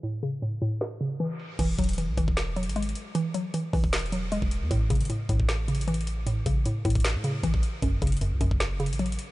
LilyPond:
<<
  \new Staff \with { instrumentName = "Synth pluck" } { \clef bass \time 4/4 \key e \major \tempo 4 = 154 <a, cis e>8 cis8 a,8 a,4 cis8 e4 | e8 fis8 e8 e4 fis8 gis4 | e8 fis8 e8 e4 fis8 gis4 | a,8 cis8 a,8 a,4 cis8 e4 |
a,8 cis8 a,8 a,4 cis8 e4 | fis,8 cis8 fis,8 fis,4 cis8 fis4 | }
  \new Staff \with { instrumentName = "808-style bass" } { \clef bass \time 4/4 \key e \major r1 | e,,8 e,,8. b,,16 e,,16 e,,4 gis,,8. r8 | r4. b,,16 e,,4. e,,8 e,16 | a,,8 gis,,8 r8 a,,2~ a,,8~ |
a,,8 a,,8 r8 a,,8. a,8. a,,8 r8 | fis,,8 fis,,8. cis,16 fis,,16 fis,,4 a,,8. r8 | }
  \new DrumStaff \with { instrumentName = "Drums" } \drummode { \time 4/4 hh8 hh8 hh8 hh32 hh32 hh32 hh32 sn8 hh8 hh8 hh8 | <cymc hh bd>8 <hh bd>32 hh32 hh32 hh32 hh8 <hh bd>16 bd16 \tuplet 3/2 { <hh sn>16 r16 r16 hh16 hh16 hh16 hh16 hh16 hh16 hh16 r16 r16 } | hh8 hh8 hh8 <hho bd>16 bd16 \tuplet 3/2 { <hh sn>16 hh16 hh16 hh16 r16 r16 } hh16 bd16 hh8 | <hh bd>8 <hh bd>32 hh32 hh32 hh32 hh8 <hh bd>16 bd16 \tuplet 3/2 { <hh sn>16 r16 r16 hh16 hh16 hh16 hh16 hh16 hh16 hh16 r16 r16 } |
hh8 <hh bd>8 hh8 <hh bd>32 hh32 <hh bd>32 hh32 <hh sn>8 hh8 <hh bd>16 bd16 hh8 | <hh bd>8 <hh bd>32 hh32 hh32 hh32 hh8 <hh bd>16 bd16 \tuplet 3/2 { <hh sn>16 r16 r16 hh16 hh16 hh16 hh16 hh16 hh16 hh16 r16 r16 } | }
>>